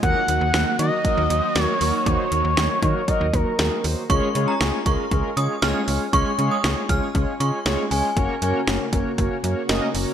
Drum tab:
HH |xxxxxxxo|xxxxxxxo|xxxxxxxo|xxxxxxxo|
SD |--o---o-|--o---o-|--o---o-|--o---o-|
BD |o---o---|o--ooo--|o--oo---|o--oo---|

HH |xxxxxxxo|
SD |--o---o-|
BD |o--oo---|